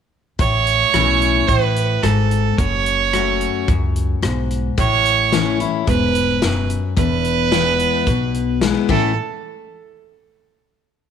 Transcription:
0.39 0.82 A1 medium
0.39 1.43 A2 medium
0.39 1.49 C#5 loud
0.39 kick loud
0.39 closed hi-hat medium
0.67 closed hi-hat medium
0.94 1.41 B1 medium
0.94 1.46 E3 soft
0.94 1.46 A3 medium
0.94 1.46 C#4 medium
0.94 1.47 E4 medium
0.94 cross-stick loud
0.94 closed hi-hat medium
1.22 closed hi-hat medium
1.47 1.95 A1 medium
1.47 2.01 A2 medium
1.47 2.04 B4 medium
1.47 kick loud
1.47 closed hi-hat medium
1.76 closed hi-hat medium
2.02 2.50 G#1 medium
2.02 2.56 G#2 medium
2.02 2.59 A4 medium
2.02 cross-stick loud
2.02 closed hi-hat medium
2.31 closed hi-hat medium
2.58 3.44 F#1 medium
2.58 3.63 F#2 medium
2.58 3.68 C#5 medium
2.58 kick loud
2.58 closed hi-hat medium
2.86 closed hi-hat medium
3.13 3.66 F#3 medium
3.13 3.66 A3 medium
3.13 3.66 C#4 medium
3.13 3.66 F#4 medium
3.13 cross-stick medium
3.13 closed hi-hat medium
3.41 closed hi-hat soft
3.68 4.15 C#2 medium
3.68 4.20 F#2 medium
3.68 kick medium
3.68 closed hi-hat medium
3.96 closed hi-hat medium
4.22 4.69 B1 medium
4.22 4.75 G#2 medium
4.22 cross-stick loud
4.22 closed hi-hat medium
4.51 closed hi-hat soft
4.78 5.63 A1 medium
4.78 5.82 A2 medium
4.78 5.56 C#5 loud
4.78 kick loud
4.78 closed hi-hat medium
5.05 closed hi-hat medium
5.32 5.59 E3 medium
5.32 5.59 A3 medium
5.32 5.59 C#4 medium
5.32 5.59 E4 medium
5.32 snare loud
5.32 closed hi-hat medium
5.60 5.87 C#4 soft
5.60 5.86 E4 medium
5.60 closed hi-hat soft
5.87 6.73 E1 medium
5.87 6.39 G#2 medium
5.87 6.66 B4 loud
5.87 kick loud
5.87 closed hi-hat medium
6.15 closed hi-hat medium
6.42 6.94 F#2 medium
6.42 snare loud
6.42 closed hi-hat medium
6.70 closed hi-hat medium
6.96 7.82 E1 medium
6.96 8.01 E2 medium
6.96 8.57 B4 loud
6.96 kick loud
6.96 closed hi-hat medium
7.25 closed hi-hat medium
7.51 8.04 E3 medium
7.51 8.04 G#3 medium
7.51 8.04 B3 medium
7.51 8.04 E4 medium
7.51 snare loud
7.51 closed hi-hat medium
7.79 closed hi-hat medium
8.07 8.71 B1 medium
8.07 8.88 B2 medium
8.07 kick loud
8.07 closed hi-hat medium
8.34 closed hi-hat medium
8.61 8.88 E3 medium
8.61 8.89 G#3 medium
8.61 8.89 B3 medium
8.61 8.89 E4 medium
8.61 snare loud
8.61 closed hi-hat medium
8.89 9.14 A1 medium
8.89 9.11 A2 medium
8.89 9.11 E3 medium
8.89 9.11 A3 medium
8.89 9.11 C#4 medium
8.89 9.11 E4 medium
8.89 9.14 A4 medium
8.89 kick medium
8.89 crash medium

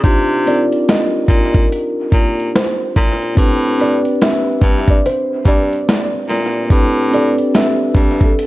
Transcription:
0.03 0.67 C3 loud
0.03 0.33 D4 medium
0.03 0.34 D#4 medium
0.03 0.34 F4 medium
0.03 0.35 G4 medium
0.03 kick loud
0.03 closed hi-hat medium
0.46 1.53 C4 medium
0.46 1.54 D#4 medium
0.46 1.54 F4 medium
0.46 1.55 A#4 medium
0.46 0.84 D5 medium
0.46 closed hi-hat medium
0.72 closed hi-hat soft
0.89 1.52 D#5 medium
0.89 snare loud
0.89 closed hi-hat medium
1.28 1.67 A#2 medium
1.28 kick loud
1.28 closed hi-hat medium
1.54 2.51 A#4 medium
1.54 kick medium
1.54 closed hi-hat soft
1.72 closed hi-hat medium
2.12 2.51 A#2 medium
2.12 kick medium
2.12 closed hi-hat medium
2.40 closed hi-hat soft
2.56 2.92 C5 medium
2.56 snare loud
2.56 closed hi-hat medium
2.96 3.35 A#2 loud
2.96 kick medium
2.96 snare soft
2.96 closed hi-hat medium
3.22 closed hi-hat soft
3.35 4.01 A2 loud
3.35 3.66 C4 medium
3.35 3.66 D4 medium
3.35 3.67 G4 medium
3.35 3.67 B4 medium
3.35 kick loud
3.35 closed hi-hat medium
3.78 4.86 C4 medium
3.78 4.86 D4 medium
3.78 4.87 G4 medium
3.78 4.87 B4 medium
3.78 4.18 D5 medium
3.78 closed hi-hat medium
4.05 closed hi-hat soft
4.22 4.85 E5 medium
4.22 snare loud
4.22 closed hi-hat medium
4.61 5.01 G2 medium
4.61 kick medium
4.61 closed hi-hat medium
4.88 5.03 D5 medium
4.88 kick medium
5.06 5.42 C5 medium
5.06 closed hi-hat medium
5.45 5.84 G2 medium
5.45 6.10 D5 medium
5.45 kick medium
5.45 closed hi-hat medium
5.73 closed hi-hat soft
5.89 snare loud
5.89 closed hi-hat medium
6.29 6.67 A#2 medium
6.29 snare soft
6.29 closed hi-hat medium
6.70 7.34 A2 loud
6.70 7.00 C4 medium
6.70 7.00 D4 medium
6.70 7.01 G4 medium
6.70 7.01 B4 medium
6.70 kick loud
6.70 closed hi-hat medium
7.10 8.19 C4 medium
7.10 8.19 D4 medium
7.10 8.20 G4 medium
7.10 8.20 A4 medium
7.10 7.51 D5 medium
7.10 closed hi-hat medium
7.38 closed hi-hat soft
7.55 8.18 E5 medium
7.55 snare loud
7.55 closed hi-hat medium
7.95 8.34 G2 medium
7.95 kick medium
7.95 closed hi-hat medium
8.21 8.47 A4 medium
8.21 kick medium
8.39 closed hi-hat medium

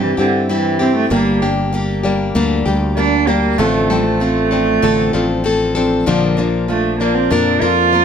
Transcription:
0.00 0.16 G2 medium
0.00 0.17 C3 medium
0.00 1.11 E3 medium
0.00 0.18 E3 medium
0.00 0.17 G3 medium
0.00 0.18 C4 medium
0.00 0.48 C4 medium
0.00 0.18 E4 medium
0.00 0.78 E4 medium
0.00 0.16 G4 medium
0.00 0.17 G4 medium
0.17 1.07 G2 medium
0.17 0.47 D3 medium
0.17 0.48 C4 soft
0.17 0.49 E4 soft
0.17 0.48 G4 medium
0.17 1.10 G4 medium
0.49 0.83 E3 medium
0.49 0.80 G3 medium
0.49 1.11 C4 medium
0.49 0.80 C4 medium
0.49 0.79 E4 medium
0.49 0.78 G4 medium
0.79 0.96 C4 medium
0.79 1.11 C4 soft
0.79 1.17 E4 soft
0.79 1.11 E4 soft
0.79 1.10 G4 soft
0.96 1.10 A3 medium
1.10 2.31 G1 loud
1.10 1.41 G2 medium
1.10 1.42 D3 medium
1.10 1.42 G3 medium
1.10 2.34 A#3 medium
1.10 1.42 A#3 medium
1.10 1.40 A#3 medium
1.10 1.41 D4 medium
1.10 1.72 G4 medium
1.10 1.41 G4 medium
1.42 1.71 G3 soft
1.42 1.73 A#3 soft
1.42 2.03 D4 medium
1.42 1.73 D4 soft
1.42 1.73 G4 soft
1.73 2.04 G3 medium
1.73 2.04 A#3 medium
1.73 2.03 D4 medium
1.73 2.64 G4 medium
1.73 2.02 G4 medium
2.03 2.34 G3 soft
2.03 2.35 A#3 medium
2.03 3.27 D4 medium
2.03 2.35 D4 soft
2.03 2.35 G4 medium
2.35 2.65 D2 medium
2.35 2.66 G2 medium
2.35 2.66 D3 medium
2.35 2.66 G3 medium
2.35 2.96 A#3 medium
2.35 2.66 A#3 medium
2.35 2.65 D4 medium
2.35 2.64 G4 medium
2.65 3.55 D2 medium
2.65 2.96 G3 medium
2.65 2.96 A#3 soft
2.65 2.97 D4 soft
2.65 2.97 G4 medium
2.65 3.59 G4 medium
2.97 3.28 G3 medium
2.97 3.59 A#3 medium
2.97 3.27 A#3 medium
2.97 3.30 D4 medium
2.97 3.27 D4 medium
2.97 3.26 G4 medium
3.27 3.59 G3 soft
3.27 3.60 A#3 medium
3.27 3.59 A#3 soft
3.27 3.58 D4 medium
3.27 3.66 D4 medium
3.27 3.59 G4 soft
3.58 4.79 A1 loud
3.58 3.90 A2 medium
3.58 3.90 D3 medium
3.58 3.90 F3 medium
3.58 3.89 A3 medium
3.58 4.82 A3 medium
3.58 3.90 C4 medium
3.58 3.90 D4 medium
3.58 4.19 F4 medium
3.58 3.89 A4 medium
3.88 4.06 G3 medium
3.88 4.51 C4 medium
3.88 4.21 D4 soft
3.88 4.21 A4 medium
3.92 4.19 F3 soft
3.92 4.20 C4 soft
4.04 5.60 A3 medium
4.20 4.52 F3 medium
4.20 4.51 C4 medium
4.20 4.51 D4 medium
4.20 5.13 F4 medium
4.20 4.50 A4 medium
4.51 4.82 F3 soft
4.51 4.82 C4 soft
4.51 5.74 C4 medium
4.51 4.82 D4 soft
4.51 4.83 A4 soft
4.82 5.13 A1 medium
4.82 5.14 A2 medium
4.82 5.14 D3 medium
4.82 5.14 F3 medium
4.82 5.44 A3 medium
4.82 5.13 C4 medium
4.82 5.13 D4 medium
4.82 5.12 A4 medium
5.13 6.04 A1 medium
5.13 5.43 F3 soft
5.13 5.43 C4 medium
5.13 5.44 D4 medium
5.13 6.07 F4 medium
5.13 5.45 A4 medium
5.44 5.76 F3 medium
5.44 6.14 A3 medium
5.44 5.75 C4 medium
5.44 5.75 D4 medium
5.44 5.74 A4 medium
5.75 6.06 F3 soft
5.75 6.13 C4 medium
5.75 6.07 C4 soft
5.75 6.07 D4 soft
5.75 6.07 A4 medium
6.06 7.28 A#1 loud
6.06 6.38 A#2 medium
6.06 6.38 D3 medium
6.06 6.38 F3 medium
6.06 8.05 F3 medium
6.06 6.37 A#3 medium
6.06 6.37 D4 medium
6.06 6.68 F4 medium
6.06 6.36 A#4 medium
6.37 6.67 F3 soft
6.37 6.70 A#3 medium
6.37 6.69 D4 medium
6.37 6.99 D4 medium
6.37 6.69 A#4 medium
6.68 7.00 F3 medium
6.68 6.98 A3 medium
6.68 7.00 D4 medium
6.68 7.62 F4 medium
7.00 7.30 F3 soft
7.00 7.17 A#3 medium
7.00 7.30 A#3 soft
7.00 8.05 D4 medium
7.00 7.31 D4 soft
7.00 7.31 A#4 soft
7.15 7.32 C4 medium
7.30 7.61 F2 medium
7.30 7.62 A#2 medium
7.30 7.62 D3 medium
7.30 7.62 F3 medium
7.30 7.92 A#3 medium
7.30 7.62 A#3 medium
7.30 7.63 D4 medium
7.30 7.61 D4 medium
7.30 7.60 A#4 medium
7.62 8.05 F2 medium
7.62 7.91 F3 soft
7.62 7.92 A#3 soft
7.62 7.93 D4 soft
7.62 8.05 F4 loud
7.62 7.93 A#4 medium
7.93 8.05 F3 soft
7.93 8.05 A#3 medium
7.93 8.05 D4 medium
7.93 8.05 A#4 medium

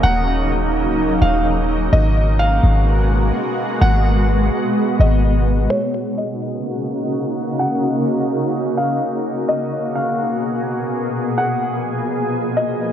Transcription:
0.00 0.88 D#1 loud
0.00 1.89 C#3 medium
0.00 1.89 F#3 medium
0.00 1.89 A#3 medium
0.00 1.89 D#4 medium
0.00 0.48 F#5 loud
0.86 1.06 C#1 loud
1.04 1.21 D#1 loud
1.22 1.90 D#1 loud
1.22 1.44 F5 medium
1.93 2.61 G#1 loud
1.93 5.67 B2 medium
1.93 5.67 G#3 medium
1.93 3.80 A#3 medium
1.93 5.67 F#4 medium
1.93 2.37 D#5 loud
2.39 2.84 F5 medium
2.64 3.32 G#1 loud
3.82 4.50 G#1 loud
3.82 5.69 B3 medium
3.82 4.26 F#5 loud
5.00 5.68 G#1 loud
5.00 5.67 D#5 medium
5.70 9.45 C#3 medium
5.70 12.93 A#3 medium
5.70 9.45 D#4 medium
5.70 9.45 F#4 medium
5.70 6.15 C#5 loud
6.18 6.62 D#5 medium
7.59 8.04 F#5 loud
8.78 9.00 F5 medium
9.49 12.93 B2 medium
9.49 11.36 F#4 medium
9.49 12.93 G#4 medium
9.49 9.93 D#5 medium
9.95 10.40 F5 medium
11.38 12.93 F3 medium
11.38 11.82 F#5 loud
12.57 12.93 D#5 medium

